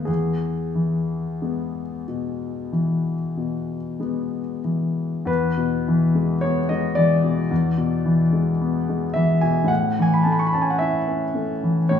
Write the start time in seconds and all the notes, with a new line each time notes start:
Already playing: D#2 A3 B3 B4
0.05 E2 G#4
0.75 E3
1.42 G#3 B3
2.08 B2
2.73 E3
3.37 B2
4.00 G#3 B3
4.64 E3
5.25 E2 B4
5.57 B2
5.88 E3
6.15 G#3
6.41 B3 C#5
6.69 G#3 D#5
6.95 E3 D5
7.24 B2
7.51 E2
7.78 B2
8.06 E3
8.33 G#3
8.61 B3
8.89 G#3
9.14 E3 E5
9.41 B2 G#5
9.64 A2 F#5
9.99 E3 G#5
10.14 B5
10.23 A3 A5
10.32 B5
10.39 C#6
10.47 B5
10.53 C#4 A5
10.62 G#5
10.70 F#5
10.79 E4 E5
11.08 C#4
11.35 A3
11.63 E3
11.89 A2 C#5